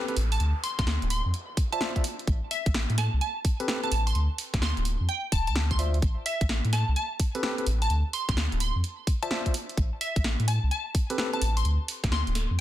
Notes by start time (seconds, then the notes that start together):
Already playing: downlifter
0.08 C4 G4 A4 B4, closed hi-hat
0.17 A1, open hi-hat
0.32 A5, open hi-hat
0.40 D2, closed hi-hat
0.64 C6, open hi-hat
0.79 D2 C6, kick, snare, closed hi-hat
0.87 snare
1.02 D1, closed hi-hat
1.10 C6, open hi-hat
1.26 F2
1.34 closed hi-hat
1.57 kick, open hi-hat
1.72 F4 C5 D5 E5 A5, closed hi-hat
1.81 F4 C5 D5 E5, snare
1.96 F4 C5 D5 E5, kick, closed hi-hat
2.04 open hi-hat
2.19 closed hi-hat
2.27 A1, kick, closed hi-hat
2.51 E5, open hi-hat
2.66 A1, kick, closed hi-hat
2.74 snare
2.90 A2, closed hi-hat
2.98 A5, snare, open hi-hat
3.13 C2
3.21 A5, closed hi-hat
3.45 kick, open hi-hat
3.60 C4 G4 A4 B4, closed hi-hat
3.68 C4 G4 A4 B4, snare
3.83 C4 G4 A4 B4 A5, closed hi-hat
3.92 A1 A5, open hi-hat
4.07 C6, open hi-hat
4.15 D2, closed hi-hat
4.38 open hi-hat
4.54 D2, kick, snare, closed hi-hat
4.62 C6, snare
4.77 D1, closed hi-hat
4.85 open hi-hat
5.00 F2
5.09 G5, closed hi-hat
5.32 D1 A5, kick, open hi-hat
5.47 D2 A5, closed hi-hat
5.56 snare
5.71 C6, kick, closed hi-hat
5.79 F4 C5 D5 E5, open hi-hat
5.94 closed hi-hat
6.02 A1, kick, closed hi-hat
6.26 E5, open hi-hat
6.41 A1, kick, closed hi-hat
6.49 snare
6.65 A2, closed hi-hat
6.73 A5, snare, open hi-hat
6.88 C2
6.96 A5, closed hi-hat
7.20 kick, open hi-hat
7.35 C4 G4 A4 B4, closed hi-hat
7.43 C4 G4 A4 B4, snare
7.58 C4 G4 A4 B4, closed hi-hat
7.67 A1, open hi-hat
7.82 A5, open hi-hat
7.90 D2, closed hi-hat
8.13 C6, open hi-hat
8.29 D2 C6, kick, snare, closed hi-hat
8.37 snare
8.52 D1, closed hi-hat
8.60 C6, open hi-hat
8.76 F2
8.84 closed hi-hat
9.07 kick, open hi-hat
9.23 F4 C5 D5 E5 A5, closed hi-hat
9.31 F4 C5 D5 E5, snare
9.46 F4 C5 D5 E5, kick, closed hi-hat
9.54 open hi-hat
9.69 closed hi-hat
9.77 A1, kick, closed hi-hat
10.01 E5, open hi-hat
10.16 A1, kick, closed hi-hat
10.24 snare
10.40 A2, closed hi-hat
10.48 A5, open hi-hat
10.63 C2
10.71 A5, closed hi-hat
10.95 kick, open hi-hat
11.10 C4 G4 A4 B4, closed hi-hat
11.18 C4 G4 A4 B4, snare
11.33 C4 G4 A4 B4 A5, closed hi-hat
11.41 A1 A5, open hi-hat
11.57 C6, open hi-hat
11.65 D2, closed hi-hat
11.88 open hi-hat
12.04 D2, kick, snare, closed hi-hat
12.12 C6, snare
12.27 D1, closed hi-hat
12.35 snare, open hi-hat
12.51 F2